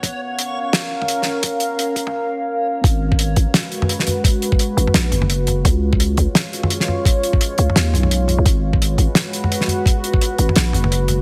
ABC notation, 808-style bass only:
X:1
M:4/4
L:1/16
Q:"Swing 16ths" 1/4=171
K:G#dor
V:1 name="808-style bass" clef=bass
z16 | z16 | G,,,6 G,,, z8 z | z6 G,,, z A,,,2 F,,,6 |
C,,6 C,, z8 z | z6 C,, z D,,2 B,,,4- B,,, B,,, | G,,,6 G,,, z8 z | z6 G,,, z A,,,2 F,,,6 |]